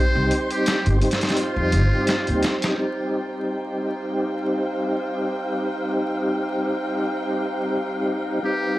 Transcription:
Already playing: tonewheel organ G3 C4 D#4 G4, violin section G4 C5 C6, muted trumpet C5, synth texture C5
0.15 upright bass C2
0.31 closed hi-hat
0.51 muted trumpet G4, closed hi-hat
0.66 snare, closed hi-hat
0.86 upright bass G1, closed hi-hat
1.00 tonewheel organ G3 C4 D#4 G4, closed hi-hat
1.11 snare, closed hi-hat
1.21 snare, closed hi-hat
1.29 snare, closed hi-hat
1.37 muted trumpet F4, closed hi-hat
1.56 upright bass F2
1.72 upright bass G1, closed hi-hat
1.91 tonewheel organ G3 C4 D#4 G4
2.07 snare, closed hi-hat
2.27 upright bass D#2, closed hi-hat
2.43 snare, closed hi-hat
2.62 snare, closed hi-hat
2.77 tonewheel organ G3 C4 D#4 G4, violin section D#4 C5 G5, synth texture F5
8.43 tonewheel organ G3 C4 D#4 G4, muted trumpet G4, violin section B4

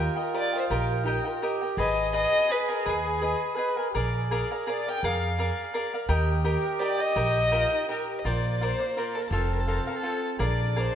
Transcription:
Already playing: trumpet F4, cavaquinho G4 A#4 D#5 G5
0.16 cavaquinho A#4 D#5 G5, violin A#4
0.34 cavaquinho G4 A#4 D#5 G5, violin D5
0.53 cavaquinho A#4 D#5 G5
0.58 violin C5
0.70 upright bass A#1, cavaquinho G4 A#4 D#5 G5, violin A#4
1.05 trumpet D#4, cavaquinho G4 A#4 D#5 G5
1.24 trumpet F4, cavaquinho A#4 D#5 G5
1.42 cavaquinho G4 A#4 D#5 G5, trumpet G4
1.62 cavaquinho A#4 D#5 G5
1.77 upright bass G#1, cavaquinho G#4 B4 D#5 G#5, trumpet G#4, violin D#5
2.13 cavaquinho G#4 B4 D#5 G#5, violin D#5
2.49 cavaquinho G#4 B4 D#5 G#5, violin B4
2.69 violin A#4, cavaquinho B4 D#5 G#5
2.85 upright bass D#2, cavaquinho G#4 B4 D#5 G#5
2.90 violin G#4
3.21 cavaquinho G#4 B4 D#5 G#5
3.56 cavaquinho G#4 B4 D#5 G#5, trumpet B4
3.76 trumpet A#4, cavaquinho B4 D#5 G#5
3.91 trumpet G#4, cavaquinho G#4 A#4
3.95 upright bass A#1, cavaquinho D5 F5
4.31 cavaquinho G#4 A#4 D5 F5
4.51 violin A#4, cavaquinho A#4 D5 F5
4.67 cavaquinho G#4 A#4 D5 F5, violin D5
4.87 cavaquinho A#4 D5 F5, violin G5
5.03 upright bass F2, cavaquinho G#4 A#4 D5 F5, violin F5
5.39 cavaquinho G#4 A#4 D5 F5
5.74 cavaquinho G#4 A#4 D5 F5
5.94 cavaquinho A#4 D5 F5
6.09 upright bass D#2, cavaquinho G4 A#4 D#5 G5, trumpet G4
6.44 cavaquinho G4 A#4 D#5 G5
6.62 violin A#4
6.79 cavaquinho G4 A#4 D#5 G5, violin D5
6.99 cavaquinho A#4 D#5 G5, violin D#5
7.16 upright bass A#1, cavaquinho G4 A#4 D#5 G5
7.52 trumpet F4, cavaquinho G4 A#4 D#5 G5
7.72 trumpet D#4
7.89 cavaquinho G4 A#4 D#5 G5, trumpet G4, violin A#4
8.19 violin D#5
8.25 upright bass A#1, trumpet A#3, cavaquinho F4 A#4 C5 D5, violin D5
8.61 cavaquinho F4 A#4 C5 D5, violin C5
8.80 cavaquinho A#4 C5 D5
8.97 cavaquinho F4 A#4 C5 D5, violin A#4
9.15 violin A4, cavaquinho A#4 C5 D5
9.22 violin A#4
9.28 upright bass F1, violin A4
9.32 trumpet C4, cavaquinho F4 A4 C5 F5
9.37 violin A#4
9.46 violin A4
9.53 violin A#4
9.60 violin A4
9.67 cavaquinho F4 A4 C5 F5, violin A#4
9.78 violin A4
9.86 cavaquinho A4 C5 F5, violin A#4
9.95 violin A4
10.03 cavaquinho F4 A4 C5 F5
10.39 upright bass A#1, trumpet D4, cavaquinho G#4 A#4 D5 F5, violin D5
10.76 cavaquinho G#4 A#4 D5 F5, violin C5

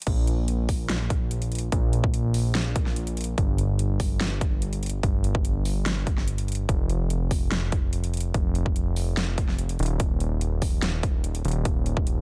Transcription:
0.02 closed hi-hat
0.07 analog synth bass A#1, kick, closed hi-hat, crash
0.27 closed hi-hat
0.48 closed hi-hat
0.69 kick, open hi-hat
0.90 snare, closed hi-hat
1.10 kick, closed hi-hat
1.31 closed hi-hat
1.42 closed hi-hat
1.52 closed hi-hat
1.55 closed hi-hat
1.59 closed hi-hat
1.72 analog synth bass A#1, kick, closed hi-hat
1.93 closed hi-hat
2.04 kick
2.14 closed hi-hat
2.34 open hi-hat
2.55 snare, closed hi-hat
2.76 kick, closed hi-hat
2.86 snare
2.96 closed hi-hat
3.07 closed hi-hat
3.17 closed hi-hat
3.21 closed hi-hat
3.24 closed hi-hat
3.38 analog synth bass G1, kick, closed hi-hat
3.58 closed hi-hat
3.79 closed hi-hat
4.00 kick, open hi-hat
4.21 snare, closed hi-hat
4.41 kick, closed hi-hat
4.62 closed hi-hat
4.73 closed hi-hat
4.83 closed hi-hat
4.86 closed hi-hat
4.90 closed hi-hat
5.03 analog synth bass G1, kick, closed hi-hat
5.24 closed hi-hat
5.35 kick
5.45 closed hi-hat
5.65 open hi-hat
5.86 snare, closed hi-hat
6.07 kick, closed hi-hat
6.18 snare
6.28 closed hi-hat
6.38 closed hi-hat
6.48 closed hi-hat
6.52 closed hi-hat
6.55 closed hi-hat
6.69 analog synth bass F1, kick, closed hi-hat
6.90 closed hi-hat
7.10 closed hi-hat
7.31 kick, open hi-hat
7.52 snare, closed hi-hat
7.72 kick, closed hi-hat
7.93 closed hi-hat
8.04 closed hi-hat
8.14 closed hi-hat
8.17 closed hi-hat
8.20 closed hi-hat
8.34 analog synth bass F1, kick, closed hi-hat
8.55 closed hi-hat
8.66 kick
8.76 closed hi-hat
8.96 open hi-hat
9.17 snare, closed hi-hat
9.38 kick, closed hi-hat
9.49 snare
9.59 closed hi-hat
9.69 closed hi-hat
9.79 analog synth bass D#1, closed hi-hat
9.83 closed hi-hat
9.86 closed hi-hat
10.00 kick, closed hi-hat
10.20 closed hi-hat
10.41 closed hi-hat
10.62 kick, open hi-hat
10.82 snare, closed hi-hat
11.03 kick, closed hi-hat
11.24 closed hi-hat
11.35 closed hi-hat
11.45 analog synth bass D#1, closed hi-hat
11.48 closed hi-hat
11.51 closed hi-hat
11.65 kick, closed hi-hat
11.86 closed hi-hat
11.97 kick
12.07 closed hi-hat

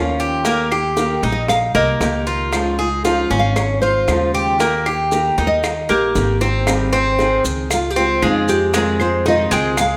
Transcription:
Already playing: upright bass D#2, steel-string acoustic guitar F3 A#3 C#4 F4, cuban tres C#4, nylon-string guitar A#4
0.20 cuban tres G4, maracas
0.45 steel-string acoustic guitar D#3 A#3 D#4 G4, cuban tres A#3, high bongo, maracas
0.71 steel-string acoustic guitar A#3 D#4 G4, cuban tres G4, high bongo, claves, maracas
0.97 steel-string acoustic guitar D#3 A#3 D#4 G4, high bongo, maracas
1.23 upright bass A#1, steel-string acoustic guitar A#3 D#4 G4, cuban tres D#4, high bongo, maracas
1.32 nylon-string guitar D#5
1.48 nylon-string guitar F5, muted steel-string acoustic guitar stroke, high bongo, claves, maracas
1.75 upright bass C2, cuban tres A#3, steel-string acoustic guitar A#3 D#4 G4, nylon-string guitar D#5, high bongo, maracas
2.00 upright bass C#2, steel-string acoustic guitar D#3 A#3 D#4 G4, high bongo, low bongo, maracas
2.27 cuban tres F4, maracas
2.53 steel-string acoustic guitar C#3 F3 G#3 D#4 F4, high bongo, claves, maracas
2.79 steel-string acoustic guitar G#3 D#4 F4, cuban tres G#4, maracas
3.05 steel-string acoustic guitar C#3 F3 G#3 D#4 F4, cuban tres F4, high bongo, maracas
3.30 upright bass G#1, steel-string acoustic guitar G#3 D#4 F4, cuban tres C#4, maracas
3.39 nylon-string guitar F5
3.56 nylon-string guitar C#5, muted steel-string acoustic guitar stroke, high bongo, claves, maracas
3.82 steel-string acoustic guitar G#3 D#4 F4, cuban tres F4, nylon-string guitar C5, maracas
4.08 upright bass D#2, steel-string acoustic guitar C#3 F3 G#3 D#4 F4, high bongo, low bongo, claves, maracas
4.34 cuban tres G4, maracas
4.60 steel-string acoustic guitar D#3 A#3 D#4 G4, cuban tres A#3, high bongo, maracas
4.86 steel-string acoustic guitar A#3 D#4 G4, cuban tres G4, high bongo, claves, maracas
5.12 steel-string acoustic guitar D#3 A#3 D#4 G4, high bongo, maracas
5.38 upright bass D#2, steel-string acoustic guitar A#3 D#4 G4, cuban tres D#4, high bongo, maracas
5.47 nylon-string guitar D#5
5.64 muted steel-string acoustic guitar stroke, high bongo, claves, maracas
5.89 upright bass A#1, cuban tres A#3, steel-string acoustic guitar A#3 D#4 G4, nylon-string guitar G4, high bongo, maracas
6.15 upright bass G#1, steel-string acoustic guitar D#3 A#3 D#4 G4, high bongo, maracas
6.41 cuban tres C4, low bongo, maracas
6.67 steel-string acoustic guitar D#3 G3 C4 D#4 G#4, high bongo, claves, maracas
6.93 cuban tres C4, steel-string acoustic guitar C4 D#4 G#4, high bongo, maracas
7.19 steel-string acoustic guitar D#3 C4 D#4 G#4, high bongo, maracas
7.45 upright bass C#2, maracas
7.71 nylon-string guitar F4, muted steel-string acoustic guitar stroke, high bongo, claves, maracas
7.90 nylon-string guitar G4
7.96 steel-string acoustic guitar G#3 C4 F4, cuban tres C4, high bongo, maracas
8.08 nylon-string guitar F4
8.22 upright bass F2, steel-string acoustic guitar C#3 F3 G#3 C4 F4, cuban tres G#3, nylon-string guitar D#4, high bongo, low bongo, claves, maracas
8.48 steel-string acoustic guitar G#3 C4 F4, nylon-string guitar G4, high bongo, maracas
8.74 steel-string acoustic guitar C3 D#3 G#3 C4 F4, cuban tres G#3, nylon-string guitar G#4, high bongo, maracas
9.00 steel-string acoustic guitar G#3 C4 F4, nylon-string guitar C5, high bongo, claves, maracas
9.26 steel-string acoustic guitar C3 D#3 G#3 C4 F4, cuban tres D#4, nylon-string guitar D#5, high bongo, maracas
9.51 upright bass C#2, cuban tres G#3, nylon-string guitar G5, maracas
9.77 nylon-string guitar F5, muted steel-string acoustic guitar stroke, high bongo, claves, maracas

